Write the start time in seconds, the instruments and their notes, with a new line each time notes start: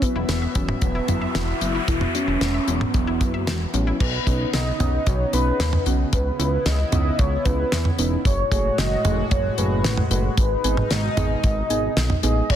Already playing: analog synth pad B3 F#4 E5, noise sweep
0.02 synth arpeggio sound F#3, synth keys F#3 B3 E4, soft synth lead B3, kick, closed hi-hat
0.15 analog synth bass E1, synth arpeggio sound E4
0.29 analog synth bass E1, synth arpeggio sound B3, snare, closed hi-hat
0.42 synth arpeggio sound E5
0.55 analog synth bass E1, synth arpeggio sound E3, synth keys F#3 B3 C#4, kick, closed hi-hat
0.69 mid tom
0.81 analog synth bass E1, synth arpeggio sound F#3, soft synth lead B3, kick, closed hi-hat
0.95 synth arpeggio sound E4
1.08 analog synth bass F#1, synth keys F#3 B3 E4, synth arpeggio sound B3, closed hi-hat, mid tom
1.21 synth arpeggio sound E5
1.35 analog synth bass E1, synth arpeggio sound E3, soft synth lead E4, snare, closed hi-hat
1.61 analog synth bass F#1, synth keys F#3 B3 E4, closed hi-hat
1.75 synth arpeggio sound E4
1.88 analog synth bass E1, synth arpeggio sound E3, soft synth lead E4, kick, closed hi-hat
2.01 synth arpeggio sound B3, mid tom
2.14 synth arpeggio sound F#3, synth keys F#3 B3 E4, soft synth lead C#4, closed hi-hat
2.28 analog synth bass E1, synth arpeggio sound E4
2.41 analog synth bass E1, synth arpeggio sound B3, snare, closed hi-hat
2.54 synth arpeggio sound E5
2.67 analog synth bass E1, synth arpeggio sound E3, synth keys F#3 B3 C#4, soft synth lead B3, closed hi-hat
2.81 mid tom
2.94 analog synth bass E1, synth arpeggio sound F#3, kick, closed hi-hat
3.07 synth arpeggio sound E4
3.21 analog synth bass F#1, synth keys F#3 B3 E4, synth arpeggio sound B3, kick, closed hi-hat
3.34 synth arpeggio sound E5
3.47 analog synth bass E1, synth arpeggio sound E3, snare, closed hi-hat
3.74 analog synth bass A1, synth keys F#3 B3 C#4, closed hi-hat
3.87 synth arpeggio sound E4
4.00 analog synth bass B1, analog synth pad C#3 B3 D#4, soft synth lead B4, kick, crash
4.27 analog synth bass B1, synth keys B3 C#4 D#4, kick, closed hi-hat
4.53 analog synth bass B1, soft synth lead D#5, snare, closed hi-hat
4.80 analog synth bass B1, synth keys B3 C#4 D#4, soft synth lead D#5, closed hi-hat, mid tom
5.07 analog synth bass B1, soft synth lead C#5, kick, closed hi-hat
5.33 analog synth bass B1, synth keys B3 C#4 D#4, soft synth lead B4, closed hi-hat
5.60 analog synth bass D#2, snare, closed hi-hat
5.73 mid tom
5.86 analog synth bass B1, synth keys B3 C#4 F#4, closed hi-hat
6.13 analog synth bass C#2, analog synth pad B3 E4, soft synth lead B4, kick, closed hi-hat
6.39 analog synth bass C#2, synth keys B3 C#4 E4, closed hi-hat
6.65 analog synth bass C#2, soft synth lead D#5, snare, closed hi-hat
6.92 analog synth bass C#2, synth keys B3 C#4 D#4, soft synth lead D#5, closed hi-hat, mid tom
7.18 analog synth bass C#2, soft synth lead C#5, kick, closed hi-hat
7.45 analog synth bass C#2, synth keys B3 C#4 E4, soft synth lead B4, kick, closed hi-hat
7.72 analog synth bass E2, snare, closed hi-hat
7.85 mid tom
7.99 analog synth bass E1, synth keys B3 C#4 D#4, closed hi-hat
8.25 analog synth bass F#1, analog synth pad A2 G#3 F#4, soft synth lead C#5, kick, closed hi-hat
8.52 analog synth bass F#1, synth keys A3 F#4 G#4, soft synth lead C#5, kick, closed hi-hat
8.78 analog synth bass F#1, soft synth lead D#5, snare, closed hi-hat
9.05 analog synth bass F#1, synth keys A3 F#4 G#4, closed hi-hat, mid tom
9.31 analog synth bass F#1, soft synth lead C#5, kick, closed hi-hat
9.58 analog synth bass F#1, synth keys A3 F#4 G#4, soft synth lead B4, closed hi-hat
9.84 analog synth bass A1, snare, closed hi-hat
9.97 mid tom
10.11 analog synth bass F#1, synth keys A3 F#4 B4, closed hi-hat
10.37 analog synth bass G#1, analog synth pad B2 D#4, soft synth lead B4, kick, closed hi-hat
10.64 analog synth bass G#1, synth keys B3 D#4 G#4, closed hi-hat
10.77 mid tom
10.91 analog synth bass G#1, soft synth lead D#5, snare, closed hi-hat
11.17 analog synth bass G#1, synth keys B3 D#4 G#4, closed hi-hat, mid tom
11.44 analog synth bass G#1, soft synth lead D#5, kick, closed hi-hat
11.70 analog synth bass G#1, synth keys B3 D#4 G#4, closed hi-hat
11.97 analog synth bass B1, snare, closed hi-hat
12.10 mid tom
12.23 analog synth bass A1, synth keys B3 D#4 G#4, soft synth lead D#5, closed hi-hat
12.50 analog synth bass B1, soft synth lead C#5, kick, crash